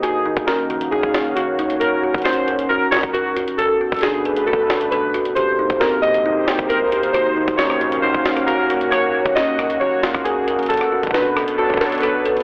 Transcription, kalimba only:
\new Staff \with { instrumentName = "Kalimba" } { \time 4/4 \key ges \lydian \tempo 4 = 135 ges'8 ees'8 des'16 r16 ges'8 ees'8 des'8 ges'8 ees'16 r16 | bes'8 ges'8 des'16 r16 bes'8 ges'8 r8 bes'8 ges'16 r16 | a'8 fis'8 d'16 r16 a'8 fis'8 d'8 a'8 fis'16 r16 | g'8 ees'8 c'16 r16 g'8 ees'8 c'16 r16 bes'8 g'16 r16 |
ges'8 ees'8 des'16 r16 ges'8 ees'8 des'8 ges'8 ges'8 | bes'8 ges'8 des'16 r16 bes'8 ges'8 des'8 bes'8 bes'8 | a'8 fis'8 d'16 r16 a'8 fis'8 d'8 a'8 a'8 | }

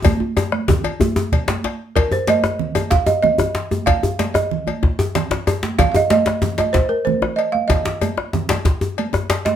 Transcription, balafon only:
\new Staff \with { instrumentName = "Balafon" } { \time 12/8 \key ees \mixolydian \tempo 4. = 125 r1. | bes'8 c''8 ees''2 f''8 ees''8 ees''2 | f''4. ees''2 r2 r8 | f''16. f''32 ees''8 ees''4. ees''8 c''8 bes'8 c''4 ees''8 f''8 |
ees''1 r4. ees''8 | }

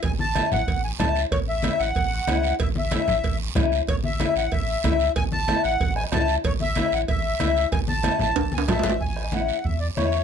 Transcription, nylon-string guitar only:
\new Staff \with { instrumentName = "Nylon-string guitar" } { \time 4/4 \key a \major \tempo 4 = 187 r4 <a cis' e'>8 r4. <a cis' e'>8 r8 | r4 <a cis' e'>8 r4. <a cis' e'>8 r8 | r4 <a cis' e'>8 r4. <a cis' e'>8 r8 | r4 <a cis' e'>8 r4. <a cis' e'>8 r8 |
r4 <a cis' e'>8 r4. <a cis' e'>8 r8 | r4 <a cis' e'>8 r4. <a cis' e'>8 r8 | r4 <a cis' e'>8 r4. <a cis' e'>8 r8 | r4 <a cis' e'>8 r4. <a cis' e'>8 r8 | }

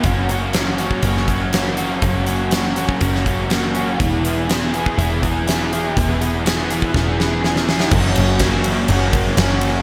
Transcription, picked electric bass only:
\new Staff \with { instrumentName = "Picked electric bass" } { \clef bass \time 4/4 \key fis \mixolydian \tempo 4 = 122 fis,,2 fis,,2 | fis,,2 fis,,2 | e,,2 e,,2 | e,,2 e,,2 |
fis,,8 fis,,4. fis,,4 fis,,4 | }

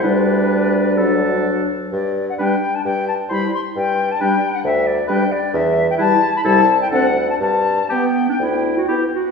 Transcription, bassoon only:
\new Staff \with { instrumentName = "Bassoon" } { \clef bass \time 4/4 \key g \major \tempo 4 = 128 d,2.~ d,8 r8 | g,4 r4 g,4 r4 | g,4 r4 d,4 r4 | e,4 r4 c,4 d,4 |
g,4 r4 d,4 r4 | }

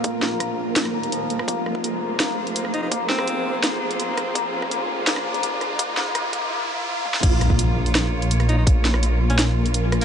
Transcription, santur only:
\new Staff \with { instrumentName = "Santur" } { \time 4/4 \key bes \minor \tempo 4 = 167 f'8 bes'8 r4. bes'8 f8 r8 | bes4 bes'8 r8 bes4 bes'8 r8 | bes4 bes'8 r8 bes4 bes'8 r8 | bes4 bes4 bes4 bes4 |
bes8 bes8 bes8 bes8 r2 | r1 | r1 | }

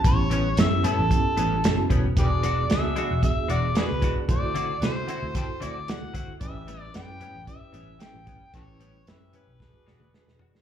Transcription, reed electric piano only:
\new Staff \with { instrumentName = "Reed electric piano" } { \time 4/4 \key a \mixolydian \tempo 4 = 113 <b cis' e' g'>4 <b cis' e' g'>4 <b cis' e' g'>4 <b cis' e' fis'>4 | <b d' fis' gis'>4 <b d' fis'>4 <b d' fis' gis'>4 <b d' fis' gis'>4 | <c' e' fis' a'>4 <c' e' fis' a'>4 <c' e' fis' a'>4 <c' e' fis' a'>4 | <cis' e' g' b'>4 <cis' e' g' b'>4 <cis' e' g' b'>4 <cis' e' g' b'>4 |
<cis' e' g' b'>4 <cis' e' g' b'>4 <d' fis' gis' b'>4 <d' fis' gis' b'>4 | }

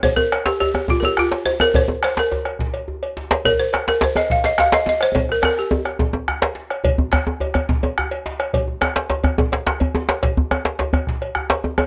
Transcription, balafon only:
\new Staff \with { instrumentName = "Balafon" } { \time 12/8 \key bes \mixolydian \tempo 4. = 141 c''8 bes'4 g'8 g'4 f'16. bes'32 g'8 f'4 c''8 bes'8 | c''4 c''8 bes'2 r2 r8 | bes'8 c''4 bes'8 c''8 ees''8 f''8 ees''8 f''8 ees''8 ees''8 c''8~ | c''8 bes'8 bes'8 g'2. r4. |
r1. | r1. | r1. | }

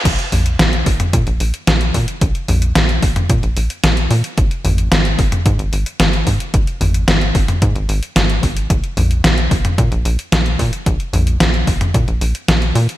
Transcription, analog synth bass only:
\new Staff \with { instrumentName = "Analog synth bass" } { \clef bass \time 4/4 \key bes \dorian \tempo 4 = 111 bes,,16 r16 bes,,8 bes,,8 bes,,16 r16 bes,16 bes,,16 bes,,16 r16 bes,,8 bes,16 r16 | bes,,16 r16 bes,,8 bes,,8 bes,,16 r16 bes,16 bes,,16 bes,,16 r16 bes,,8 bes,16 r16 | aes,,16 r16 aes,,8 aes,,8 aes,,16 r16 aes,16 aes,,16 aes,,16 r16 aes,,8 aes,16 r16 | aes,,16 r16 aes,,8 aes,,8 aes,,16 r16 aes,16 aes,,16 aes,,16 r16 aes,,8 aes,,8 |
bes,,16 r16 bes,,8 bes,,8 bes,,16 r16 bes,16 bes,,16 bes,,16 r16 bes,,8 bes,16 r16 | bes,,16 r16 bes,,8 bes,,8 bes,,16 r16 bes,16 bes,,16 bes,,16 r16 bes,,8 bes,16 r16 | }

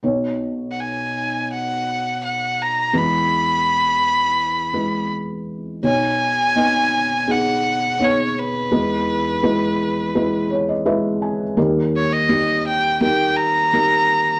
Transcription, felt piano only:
<<
  \new Staff \with { instrumentName = "Felt piano" } { \time 4/4 \key b \major \tempo 4 = 83 << { r1 | r1 | r1 | r2 r8 cis''16 dis''16 e''8 gis''8 |
r1 | } \\ { <b dis' cis''>1 | <gis e' b'>2~ <gis e' b'>8 <gis e' b'>4. | <b dis' cis''>4 <b dis' dis''>4 <b dis' gis'>4 <b dis' cis''>4 | <gis e' b'>4 <gis e' b'>4 <gis e' b'>4 <gis e' b'>4 |
<g dis' ais'>4 <g dis' g'>4 <g dis' ais'>4 <g dis' ais'>4 | } >> }
  \new Staff \with { instrumentName = "Felt piano" } { \clef bass \time 4/4 \key b \major <b,, b,>1 | <e, e>1 | <b,, b,>1 | <e, e>1 |
<dis, dis>1 | }
>>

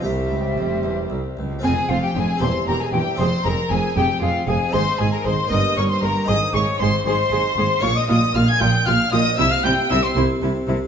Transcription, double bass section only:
\new Staff \with { instrumentName = "Double bass section" } { \clef bass \time 6/8 \key f \minor \tempo 4. = 77 c,8 des,8 f,,8 e,,8 c,8 des,8 | f,,8 f,,8 f,,8 e,,8 e,,8 e,,8 | f,,8 f,,8 f,,8 f,,8 f,,8 f,,8 | aes,,8 aes,,8 aes,,8 g,,8 g,,8 g,,8 |
aes,,8 aes,,8 aes,,8 aes,,8 aes,,8 aes,,8 | bes,,8 bes,,8 bes,,8 bes,,8 bes,,8 bes,,8 | c,8 c,8 c,8 c,8 c,8 c,8 | }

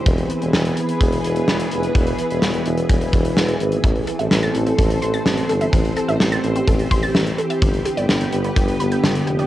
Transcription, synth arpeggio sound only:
\new Staff \with { instrumentName = "Synth arpeggio sound" } { \time 4/4 \key a \minor \tempo 4 = 127 r1 | r1 | e16 r16 a'16 e''16 r16 a'''16 r16 c'16 a'16 r16 c'''16 a'''16 e16 r16 a'16 e''16 | e16 r16 a'16 e''16 r16 a'''16 r16 c'16 a'16 r16 c'''16 a'''16 e16 r16 a'16 e''16 |
d16 r16 g'16 d''16 r16 g'''16 r16 b16 g'16 r16 b''16 g'''16 d16 r16 g'16 d''16 | }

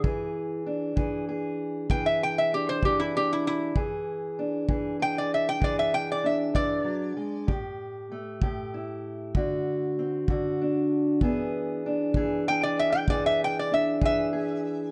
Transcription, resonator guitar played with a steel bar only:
\new Staff \with { instrumentName = "Resonator guitar played with a steel bar" } { \time 12/8 \key e \dorian \tempo 4. = 64 r2. g''16 e''16 g''16 e''16 g'16 c''16 g'16 e'16 g'16 e'16 e'8 | r2 g''16 d''16 e''16 g''16 d''16 e''16 g''16 d''16 e''8 d''4. | r1. | r2 g''16 d''16 e''16 g''16 d''16 e''16 g''16 d''16 e''8 e''4. | }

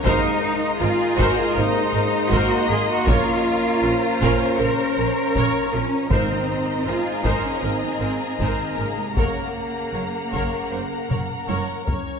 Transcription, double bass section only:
\new Staff \with { instrumentName = "Double bass section" } { \clef bass \time 4/4 \key aes \mixolydian \tempo 4 = 79 aes,,8 r8 aes,,8 aes,,8 aes,,8 aes,,8 aes,,8 aes,,8 | bes,,8 r8 bes,,8 bes,,8 bes,,8 bes,,8 bes,,8 bes,,8 | aes,,8 r8 aes,,8 aes,,8 aes,,8 aes,,8 aes,,8 aes,,8 | ges,,8 r8 ges,,8 ges,,8 ges,,8 ges,,8 ges,,8 ges,,8 | }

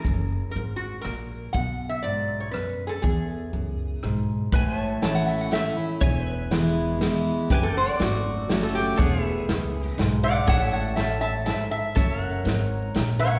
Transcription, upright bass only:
\new Staff \with { instrumentName = "Upright bass" } { \clef bass \time 3/4 \key a \major \tempo 4 = 121 fis,,4 gis,,4 ais,,4 | b,,2. | e,4 cis,4 b,,4 | a,,2. |
e,,2. | fis,,4 gis,,4 fis,,4 | e,,4 cis,4 b,,4 | a,,2. |
fis,,4 gis,,4 ais,,4 | }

